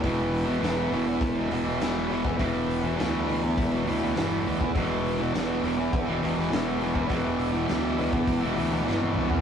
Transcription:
<<
  \new Staff \with { instrumentName = "Transistor combo organ" } { \time 4/4 \key e \minor \tempo 4 = 102 <e' g' b'>1~ | <e' g' b'>1 | <e' g' d''>1~ | <e' g' d''>1 | }
  \new Staff \with { instrumentName = "Distorted electric guitar" } { \clef bass \time 4/4 \key e \minor <e, b, e>8. <b, e>16 <e, b, e>8 <e, b, e>8. <b, e>16 <e, b, e>16 <b, e>16 <e, b, e>8 <e, b, e>8 | <e, b, e>8. <b, e>16 <e, b, e>8 <e, b, e>8. <b, e>16 <e, b, e>16 <b, e>16 <e, b, e>8 <e, b, e>8 | <e, b, e>8. <b, e>16 <e, b, e>8 <e, b, e>8. <b, e>16 <e, b, e>16 <b, e>16 <e, b, e>8 <e, b, e>8 | <e, b, e>8. <b, e>16 <e, b, e>8 <e, b, e>8. <b, e>16 <e, b, e>16 <b, e>16 <e, b, e>8 <e, b, e>8 | }
  \new Staff \with { instrumentName = "Fingered electric bass" } { \clef bass \time 4/4 \key e \minor e,,4 e,,8 e,,8 e,,8 e,,8 e,,4 | e,,4 d,4 e,,8 d,8 g,,8 d,8 | e,,4 e,,8 e,,8 e,,8 e,,8 e,,4 | e,,4 d,4 e,,8 d,8 g,,8 c,8 | }
  \new DrumStaff \with { instrumentName = "Drums" } \drummode { \time 4/4 <hho bd>8 hho8 <hho sn>8 hho8 <hho bd>8 hho8 <hho sn>8 hho16 bd16 | <hho bd>8 hho8 <hho sn>8 hho8 <hho bd>8 hho8 <hho sn>8 hho16 bd16 | <hho bd>8 hho8 <hho sn>8 hho8 <hho bd>8 hho16 sn16 <hho sn>8 hho16 bd16 | <hho bd>8 hho8 <hho sn>8 hho16 bd16 <hho bd>8 hho8 sn16 tommh16 toml16 tomfh16 | }
>>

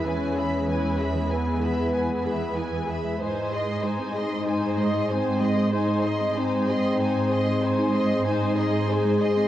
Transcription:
<<
  \new Staff \with { instrumentName = "Violin section" } { \time 5/4 \key gis \minor \tempo 4 = 95 gis''8 <e'' b''>8 gis''8 <e'' b''>8 gis''8 <e'' b''>8 gis''8 <e'' b''>8 gis''8 <e'' b''>8 | <bis' gis''>8 <dis'' bis''>8 <bis' gis''>8 <dis'' bis''>8 <bis' gis''>8 <dis'' bis''>8 <bis' gis''>8 <dis'' bis''>8 <bis' gis''>8 <dis'' bis''>8 | <bis' gis''>8 <dis'' bis''>8 <bis' gis''>8 <dis'' bis''>8 <bis' gis''>8 <dis'' bis''>8 <bis' gis''>8 <dis'' bis''>8 <bis' gis''>8 <dis'' bis''>8 | }
  \new Staff \with { instrumentName = "Viola section" } { \time 5/4 \key gis \minor <e' b'>8 gis'8 <e' b'>8 gis'8 <e' b'>8 gis'8 <e' b'>8 gis'8 <e' b'>8 gis'8 | <dis' bis'>8 <gis' dis''>8 <dis' bis'>8 <gis' dis''>8 <dis' bis'>8 <gis' dis''>8 <dis' bis'>8 <gis' dis''>8 <dis' bis'>8 <gis' dis''>8 | <dis' bis'>8 <gis' dis''>8 <dis' bis'>8 <gis' dis''>8 <dis' bis'>8 <gis' dis''>8 <dis' bis'>8 <gis' dis''>8 <dis' bis'>8 <gis' dis''>8 | }
  \new Staff \with { instrumentName = "Ambient pad" } { \time 5/4 \key gis \minor <gis e' gis' b'>1~ <gis e' gis' b'>4 | <gis dis' gis' bis'>1~ <gis dis' gis' bis'>4 | <gis dis' gis' bis'>1~ <gis dis' gis' bis'>4 | }
  \new Staff \with { instrumentName = "French horn section" } { \time 5/4 \key gis \minor cis'2 b2 r4 | dis'2. bis4 dis'4 | bis2. dis'4 gis'4 | }
  \new Staff \with { instrumentName = "Synth pluck" } { \time 5/4 \key gis \minor e16 r8. e16 gis16 r16 e16 e'16 b16 e16 e'16 r16 gis16 e16 e'16 e'16 e16 e'16 gis16 | gis16 r8. gis16 bis16 r16 gis16 gis'16 dis'16 gis16 gis'16 r16 bis16 gis16 gis'16 gis'16 gis16 gis'16 bis16 | gis16 r8. gis16 bis16 r16 gis16 gis'16 dis'16 gis16 gis'16 r16 bis16 gis16 gis'16 gis'16 gis16 gis'16 bis16 | }
  \new Staff \with { instrumentName = "Cello section" } { \clef bass \time 5/4 \key gis \minor e,1~ e,8 r8 | gis,1~ gis,4 | gis,1~ gis,4 | }
>>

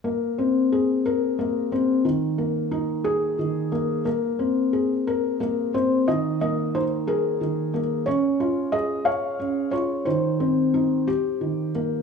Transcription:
\new Staff \with { instrumentName = "Felt piano" } { \time 6/8 \key aes \major \tempo 4. = 60 << { r2. | r2. | r2 bes'8 c''8 | ees''8 ees''8 c''8 bes'4 r8 |
des''4 ees''8 f''4 des''8 | c''2~ c''8 r8 | } \\ { bes8 c'8 aes'8 bes'8 bes8 c'8 | ees8 bes8 ees'8 aes'8 ees8 bes8 | bes8 c'8 aes'8 bes'8 bes8 c'8 | ees8 bes8 ees'8 aes'8 ees8 bes8 |
des'8 f'8 aes'8 des''8 des'8 f'8 | ees8 c'8 ees'8 g'8 ees8 bes8 | } >> }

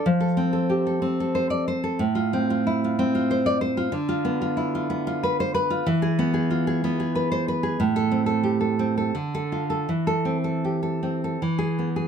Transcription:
\new Staff \with { instrumentName = "Nylon-string guitar" } { \time 3/4 \key f \major \tempo 4 = 92 << { r2 r16 d''16 r8 | r2 r16 d''16 r8 | \key a \minor r2 r16 c''16 r8 | r2 r16 c''16 r8 |
r16 a'8 r4. a'8 r16 | r16 a'8 r4. gis'8 r16 | } \\ { f16 a'16 c'16 a'16 g'16 a'16 c'16 a'16 c''8 c''16 a'16 | a,16 f'16 c'16 f'16 e'16 f'16 c'16 f'16 c''8 c''16 f'16 | d16 f'16 b16 f'16 e'16 f'16 b16 f'16 b'8 b'16 f'16 | e16 gis'16 b16 gis'16 f'16 gis'16 b16 gis'16 b'8 b'16 gis'16 |
a,8 c'16 a'16 g'16 a'16 c'16 a'16 d8 f'16 a'16 | e8 c'16 a'16 g'16 a'16 c'16 a'16 e8 b16 gis'16 | } >> }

